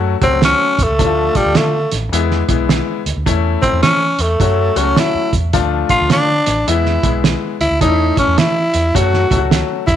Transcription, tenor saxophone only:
0.23 0.42 C4 medium
0.45 0.85 C#4 loud
0.83 1.38 A3 medium
1.37 1.59 G3 loud
1.57 1.93 A3 medium
3.62 3.82 C4 medium
3.83 4.23 C#4 loud
4.22 4.79 A3 medium
4.78 5.01 C#4 medium
4.99 5.34 E4 medium
5.90 6.10 F4 loud
6.12 6.70 D4 loud
6.69 7.25 E4 medium
7.61 7.80 E4 medium
7.82 8.15 D#4 medium
8.19 8.40 C#4 loud
8.38 8.97 E4 loud
8.96 9.52 F#4 medium
9.87 9.96 E4 medium

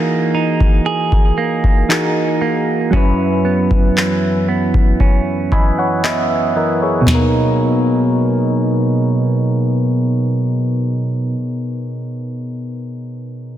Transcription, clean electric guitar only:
0.00 2.93 E3 medium
0.00 1.37 A#3 medium
0.00 0.33 D#4 medium
0.00 0.85 G#4 medium
0.35 1.88 D#4 medium
0.86 3.03 G#4 medium
1.38 2.40 A#3 medium
1.90 2.93 D#4 medium
2.42 3.04 A#3 medium
2.93 7.07 F#2 medium
2.93 4.99 C#4 medium
3.45 4.48 B3 medium
3.97 5.51 E3 medium
4.49 6.04 B3 medium
5.00 7.18 C#4 medium
5.52 6.54 E3 medium
6.04 7.15 B3 medium
6.56 7.09 E3 medium
7.01 11.35 B2 medium
7.09 11.43 F#3 medium
7.15 11.49 A#3 medium
7.21 11.55 D#4 medium

